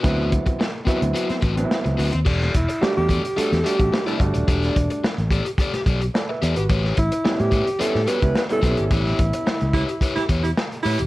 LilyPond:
<<
  \new Staff \with { instrumentName = "Overdriven electric guitar" } { \time 4/4 \key e \dorian \tempo 4 = 108 <c' fis' b'>8 r4 <c' fis' b'>16 r16 <c' fis' b'>16 r16 <c' fis' b'>16 r8. <c' fis' b'>16 r16 | <g' a' d''>8 r4 <g' a' d''>16 r16 <g' a' d''>16 r16 <g' a' d''>16 r8 <g' a' d''>16 r8 | <g' a' d''>8 r4 <g' a' d''>16 r16 <g' a' d''>16 r16 <g' a' d''>16 r8. <g' a' d''>16 r16 | <g' b' cis''>8 r4 <g' b' cis''>16 r16 <g' b' cis''>16 r16 <g' b' cis''>16 r8. <g' b' cis''>16 r16 |
<g' b' cis''>8 r4 <g' b' cis''>16 r16 <g' b' cis''>16 r16 <g' b' cis''>16 r8. <g' b' cis''>16 r16 | }
  \new Staff \with { instrumentName = "Alto saxophone" } { \time 4/4 \key e \dorian r1 | r8 e'8 g'16 g'8. a'8 g'8. e'16 d'8~ | d'4. r2 r8 | r8 e'8. g'8. a'8 b'8 b'16 a'8. |
e'2. r4 | }
  \new Staff \with { instrumentName = "Baritone saxophone" } { \time 4/4 \key e \dorian r1 | r1 | r1 | r1 |
r4. e'16 r8 e'16 r16 e'16 r8 e'8 | }
  \new Staff \with { instrumentName = "Clav" } { \time 4/4 \key e \dorian <fis b c' e'>4~ <fis b c' e'>16 r16 <fis b c' e'>4 r16 <fis b c' d' e'>4 r16 | r4 <g a d' fis'>8. r16 <g a d' fis'>8 <g a d' fis'>16 <g a d' fis'>8 <g a d' a'>16 <g a d' fis'>8~ | <g a d' fis'>4 r2 <a' d''>16 <b' e''>8 <fis' b'>16~ | <fis' b'>16 r8. <g b cis' e'>8. r16 <g b cis' e'>8 <g b cis' fis'>16 <g b cis' e'>8 <g b cis' e'>16 <g b c' cis' e'>8~ |
<g b c' cis' e'>4 r2. | }
  \new Staff \with { instrumentName = "Fingered electric bass" } { \clef bass \time 4/4 \key e \dorian d,8. r4 d,16 r8 a,,8 r16 cis,16 d,16 dis,16 | e,,8 e,,16 r8 e,8 r8 e,16 r16 a,,16 r8 g,,16 dis,,16 | e,,8 e,,16 r8 a,,8 r8. b,,8 r8 e,16 gis,,16 | a,,8 a,,16 r8 a,8 r8 a,16 r16 cis,16 r8 b,,16 gis,,16 |
a,,8 a,,16 r8 cis,8 r8. e,8 r8 a,16 dis,,16 | }
  \new DrumStaff \with { instrumentName = "Drums" } \drummode { \time 4/4 <hh bd>8 <hh bd>16 <hh bd>16 sn8 <hh bd>16 hh16 hh16 <hh sn>16 <hh bd>16 hh16 sn16 hh16 hho16 hh16 | <cymc bd>16 <hh sn>16 <hh bd>16 hh16 sn8 <hh bd>16 hh16 hh16 <hh sn>16 hh16 <hh bd>16 sn16 hh16 <hh bd>16 hh16 | <hh bd>16 <hh sn>16 <hh bd>16 hh16 sn16 hh16 <hh bd>16 hh16 <hh bd>16 <hh sn>16 <hh bd>16 hh16 sn8 hh16 hh16 | <hh bd>16 sn16 <hh bd>16 hh16 sn16 hh16 <hh bd>16 hh16 hh16 sn16 hh16 <hh bd>16 sn16 hh16 <hh bd>16 hh16 |
<hh bd>16 sn16 <hh bd>16 hh16 sn16 hh16 <hh bd>16 hh16 <hh bd>16 sn16 <hh bd>16 hh16 sn16 hh16 hho16 hh16 | }
>>